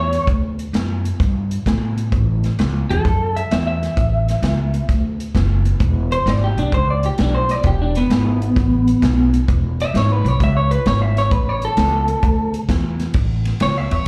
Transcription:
Already playing: E2 C#5
0.13 snare, closed hi-hat
0.27 D2, kick, closed hi-hat
0.59 closed hi-hat
0.73 F#2, snare, closed hi-hat
1.05 closed hi-hat
1.20 G2, kick, snare, closed hi-hat
1.51 closed hi-hat
1.66 A2, kick, snare, closed hi-hat
1.98 closed hi-hat
2.12 A1, kick, closed hi-hat
2.44 snare, closed hi-hat
2.59 C#2, snare, closed hi-hat
2.90 E2 A4, closed hi-hat
3.05 F#2, kick, snare, closed hi-hat
3.36 E5, closed hi-hat
3.51 E2 E5, snare, closed hi-hat
3.67 E5
3.83 snare, closed hi-hat
3.97 A1, kick, closed hi-hat
4.28 snare, closed hi-hat
4.42 C#2, snare, closed hi-hat
4.74 closed hi-hat
4.89 D2, kick, snare, closed hi-hat
5.20 closed hi-hat
5.35 F#1, kick, snare, closed hi-hat
5.65 closed hi-hat
5.80 E1, kick, closed hi-hat
6.12 C5, closed hi-hat
6.26 G#1 D5, snare, closed hi-hat
6.44 G4
6.57 B1 D4, closed hi-hat
6.72 C#2 C5, kick, closed hi-hat
6.90 D5
7.03 G4, closed hi-hat
7.18 B1 D4, snare, closed hi-hat
7.35 C5
7.49 D5, snare, closed hi-hat
7.63 E1 G4, kick, closed hi-hat
7.82 D4
7.95 B3, snare, closed hi-hat
8.10 G#1, snare, closed hi-hat
8.42 closed hi-hat
8.56 A1, kick, snare, closed hi-hat
8.87 closed hi-hat
9.02 B1, kick, snare, closed hi-hat
9.34 closed hi-hat
9.48 E1, kick, closed hi-hat
9.80 E5, snare, closed hi-hat
9.94 G#1 C#5, snare, closed hi-hat
10.12 B4
10.24 B1 C#5, closed hi-hat
10.40 C#2 E5, kick, snare, closed hi-hat
10.57 C#5
10.71 B4, closed hi-hat
10.86 G#1 C#5, snare, closed hi-hat
11.02 E5
11.17 C#5, snare, closed hi-hat
11.31 A1 B4, kick, closed hi-hat
11.49 C#5
11.62 A4, closed hi-hat
11.77 C#2, snare, closed hi-hat
12.08 closed hi-hat
12.23 D2, kick, closed hi-hat
12.54 closed hi-hat
12.69 E2, kick, snare, closed hi-hat
13.00 snare, closed hi-hat
13.14 A1, kick, ride
13.45 snare, ride
13.60 C#2 C#5, snare, ride
13.78 E5
13.91 E2 C#5, ride

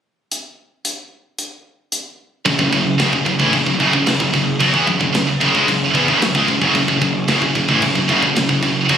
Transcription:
0.32 closed hi-hat
0.85 closed hi-hat
1.39 closed hi-hat
1.92 closed hi-hat
2.46 F#1 F#2 C#3, kick, crash
2.59 F#1 F#2 C#3, kick
2.72 F#1 F#2 C#3, kick, crash
2.99 F#1 F#2 C#3, snare, crash
3.13 F#1 F#2 C#3, kick
3.26 F#1 F#2 C#3, kick, crash
3.40 A1 A2 E3, kick
3.53 F#1 F#2 C#3, kick, crash
3.66 F#1 F#2 C#3, kick
3.80 F#1 F#2 C#3, kick, crash
3.93 F#1 F#2 C#3, kick
4.07 F#1 F#2 C#3, snare, crash
4.20 F#1 F#2 C#3, kick
4.34 F#1 F#2 C#3, kick, crash
4.60 B1 B2 F#3, kick, crash
4.73 E2 E3 B3, kick
4.87 F#1 F#2 C#3, kick, crash
5.00 F#1 F#2 C#3, kick
5.14 F#1 F#2 C#3, snare, crash
5.27 muted distorted electric guitar stroke, muted picked electric bass stroke
5.40 F#1 F#2 C#3, kick, crash
5.53 C#2 C#3 G#3, kick
5.67 F#1 F#2 C#3, kick, crash
5.94 E2 E3 B3, kick, crash
6.08 F#1 F#2 C#3, kick
6.22 F#1 F#2 C#3, snare, crash
6.35 C#2 C#3 G#3, kick
6.48 F#1 F#2 C#3, kick, crash
6.62 F#1 F#2 C#3, kick
6.75 F#1 F#2 C#3, kick, crash
6.88 F#1 F#2 C#3, kick
7.01 F#1 F#2 C#3, kick, crash
7.28 F#1 F#2 C#3, snare, crash
7.42 F#1 F#2 C#3, kick
7.55 F#1 F#2 C#3, kick, crash
7.69 A1 A2 E3, kick
7.82 F#1 F#2 C#3, kick, crash
7.95 F#1 F#2 C#3, kick
8.09 F#1 F#2 C#3, kick, crash
8.22 F#1 F#2 C#3, kick
8.36 F#1 F#2 C#3, snare, crash
8.49 F#1 F#2 C#3, kick
8.63 F#1 F#2 C#3, kick, crash
8.89 B1 B2 F#3, kick, crash

